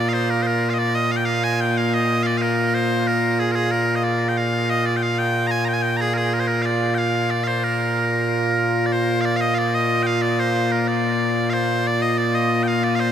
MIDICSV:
0, 0, Header, 1, 2, 480
1, 0, Start_track
1, 0, Tempo, 652174
1, 813, Time_signature, 2, 2, 24, 8
1, 9656, End_track
2, 0, Start_track
2, 0, Title_t, "Bagpipes"
2, 0, Program_c, 0, 109
2, 0, Note_on_c, 0, 46, 89
2, 0, Note_on_c, 0, 58, 89
2, 0, Note_on_c, 0, 65, 89
2, 66, Note_on_c, 0, 77, 96
2, 99, Note_off_c, 0, 77, 0
2, 99, Note_on_c, 0, 72, 96
2, 222, Note_off_c, 0, 72, 0
2, 222, Note_on_c, 0, 70, 82
2, 311, Note_off_c, 0, 70, 0
2, 311, Note_on_c, 0, 72, 90
2, 343, Note_off_c, 0, 72, 0
2, 343, Note_on_c, 0, 70, 90
2, 513, Note_off_c, 0, 70, 0
2, 513, Note_on_c, 0, 77, 72
2, 545, Note_off_c, 0, 77, 0
2, 545, Note_on_c, 0, 75, 72
2, 578, Note_off_c, 0, 75, 0
2, 578, Note_on_c, 0, 74, 105
2, 698, Note_off_c, 0, 74, 0
2, 698, Note_on_c, 0, 75, 102
2, 821, Note_off_c, 0, 75, 0
2, 821, Note_on_c, 0, 77, 106
2, 856, Note_off_c, 0, 77, 0
2, 856, Note_on_c, 0, 79, 88
2, 921, Note_off_c, 0, 79, 0
2, 921, Note_on_c, 0, 77, 102
2, 1058, Note_off_c, 0, 77, 0
2, 1058, Note_on_c, 0, 80, 110
2, 1183, Note_off_c, 0, 80, 0
2, 1183, Note_on_c, 0, 79, 94
2, 1305, Note_off_c, 0, 79, 0
2, 1305, Note_on_c, 0, 77, 92
2, 1428, Note_off_c, 0, 77, 0
2, 1428, Note_on_c, 0, 75, 100
2, 1642, Note_off_c, 0, 75, 0
2, 1642, Note_on_c, 0, 77, 100
2, 1668, Note_off_c, 0, 77, 0
2, 1668, Note_on_c, 0, 74, 100
2, 1749, Note_off_c, 0, 74, 0
2, 1749, Note_on_c, 0, 77, 90
2, 1779, Note_off_c, 0, 77, 0
2, 1779, Note_on_c, 0, 70, 90
2, 2018, Note_off_c, 0, 70, 0
2, 2018, Note_on_c, 0, 72, 104
2, 2261, Note_off_c, 0, 72, 0
2, 2261, Note_on_c, 0, 70, 88
2, 2500, Note_off_c, 0, 70, 0
2, 2500, Note_on_c, 0, 68, 82
2, 2590, Note_off_c, 0, 68, 0
2, 2590, Note_on_c, 0, 70, 89
2, 2616, Note_off_c, 0, 70, 0
2, 2616, Note_on_c, 0, 68, 89
2, 2734, Note_off_c, 0, 68, 0
2, 2734, Note_on_c, 0, 70, 92
2, 2911, Note_off_c, 0, 70, 0
2, 2911, Note_on_c, 0, 75, 72
2, 2971, Note_off_c, 0, 75, 0
2, 2971, Note_on_c, 0, 74, 91
2, 3154, Note_off_c, 0, 74, 0
2, 3154, Note_on_c, 0, 79, 69
2, 3217, Note_off_c, 0, 79, 0
2, 3217, Note_on_c, 0, 77, 94
2, 3458, Note_off_c, 0, 77, 0
2, 3458, Note_on_c, 0, 75, 100
2, 3576, Note_off_c, 0, 75, 0
2, 3576, Note_on_c, 0, 74, 90
2, 3655, Note_off_c, 0, 74, 0
2, 3655, Note_on_c, 0, 79, 80
2, 3697, Note_off_c, 0, 79, 0
2, 3697, Note_on_c, 0, 77, 91
2, 3815, Note_off_c, 0, 77, 0
2, 3815, Note_on_c, 0, 79, 102
2, 4027, Note_off_c, 0, 79, 0
2, 4027, Note_on_c, 0, 82, 99
2, 4055, Note_off_c, 0, 82, 0
2, 4055, Note_on_c, 0, 80, 99
2, 4158, Note_off_c, 0, 80, 0
2, 4158, Note_on_c, 0, 82, 88
2, 4183, Note_off_c, 0, 82, 0
2, 4183, Note_on_c, 0, 79, 88
2, 4222, Note_off_c, 0, 79, 0
2, 4222, Note_on_c, 0, 80, 80
2, 4286, Note_off_c, 0, 80, 0
2, 4286, Note_on_c, 0, 79, 96
2, 4392, Note_off_c, 0, 79, 0
2, 4392, Note_on_c, 0, 82, 93
2, 4423, Note_off_c, 0, 82, 0
2, 4423, Note_on_c, 0, 68, 93
2, 4519, Note_off_c, 0, 68, 0
2, 4519, Note_on_c, 0, 70, 78
2, 4544, Note_off_c, 0, 70, 0
2, 4544, Note_on_c, 0, 68, 78
2, 4664, Note_off_c, 0, 68, 0
2, 4664, Note_on_c, 0, 70, 87
2, 4708, Note_off_c, 0, 70, 0
2, 4708, Note_on_c, 0, 72, 80
2, 4764, Note_off_c, 0, 72, 0
2, 4764, Note_on_c, 0, 70, 83
2, 4874, Note_off_c, 0, 70, 0
2, 4874, Note_on_c, 0, 77, 86
2, 4899, Note_off_c, 0, 77, 0
2, 4899, Note_on_c, 0, 74, 86
2, 5112, Note_off_c, 0, 74, 0
2, 5112, Note_on_c, 0, 79, 88
2, 5136, Note_off_c, 0, 79, 0
2, 5136, Note_on_c, 0, 77, 88
2, 5377, Note_off_c, 0, 77, 0
2, 5377, Note_on_c, 0, 74, 88
2, 5475, Note_off_c, 0, 74, 0
2, 5475, Note_on_c, 0, 77, 84
2, 5501, Note_off_c, 0, 77, 0
2, 5501, Note_on_c, 0, 72, 84
2, 5621, Note_off_c, 0, 72, 0
2, 5621, Note_on_c, 0, 70, 74
2, 6521, Note_off_c, 0, 70, 0
2, 6521, Note_on_c, 0, 74, 77
2, 6566, Note_off_c, 0, 74, 0
2, 6566, Note_on_c, 0, 72, 95
2, 6779, Note_off_c, 0, 72, 0
2, 6779, Note_on_c, 0, 77, 98
2, 6811, Note_off_c, 0, 77, 0
2, 6811, Note_on_c, 0, 74, 98
2, 6893, Note_off_c, 0, 74, 0
2, 6893, Note_on_c, 0, 77, 99
2, 6925, Note_off_c, 0, 77, 0
2, 6925, Note_on_c, 0, 75, 99
2, 7027, Note_off_c, 0, 75, 0
2, 7027, Note_on_c, 0, 77, 92
2, 7054, Note_off_c, 0, 77, 0
2, 7054, Note_on_c, 0, 74, 92
2, 7174, Note_off_c, 0, 74, 0
2, 7174, Note_on_c, 0, 75, 102
2, 7380, Note_off_c, 0, 75, 0
2, 7380, Note_on_c, 0, 79, 102
2, 7408, Note_off_c, 0, 79, 0
2, 7408, Note_on_c, 0, 77, 102
2, 7520, Note_off_c, 0, 77, 0
2, 7520, Note_on_c, 0, 74, 98
2, 7650, Note_off_c, 0, 74, 0
2, 7650, Note_on_c, 0, 72, 103
2, 7887, Note_off_c, 0, 72, 0
2, 7887, Note_on_c, 0, 70, 78
2, 8005, Note_off_c, 0, 70, 0
2, 8005, Note_on_c, 0, 74, 96
2, 8464, Note_off_c, 0, 74, 0
2, 8464, Note_on_c, 0, 77, 93
2, 8489, Note_off_c, 0, 77, 0
2, 8489, Note_on_c, 0, 72, 93
2, 8735, Note_off_c, 0, 72, 0
2, 8735, Note_on_c, 0, 74, 106
2, 8846, Note_off_c, 0, 74, 0
2, 8846, Note_on_c, 0, 75, 91
2, 8963, Note_off_c, 0, 75, 0
2, 8963, Note_on_c, 0, 74, 94
2, 9089, Note_off_c, 0, 74, 0
2, 9089, Note_on_c, 0, 75, 89
2, 9296, Note_off_c, 0, 75, 0
2, 9296, Note_on_c, 0, 79, 98
2, 9328, Note_off_c, 0, 79, 0
2, 9328, Note_on_c, 0, 77, 98
2, 9449, Note_off_c, 0, 77, 0
2, 9449, Note_on_c, 0, 74, 90
2, 9535, Note_off_c, 0, 74, 0
2, 9535, Note_on_c, 0, 77, 101
2, 9567, Note_off_c, 0, 77, 0
2, 9567, Note_on_c, 0, 72, 101
2, 9656, Note_off_c, 0, 46, 0
2, 9656, Note_off_c, 0, 58, 0
2, 9656, Note_off_c, 0, 65, 0
2, 9656, Note_off_c, 0, 72, 0
2, 9656, End_track
0, 0, End_of_file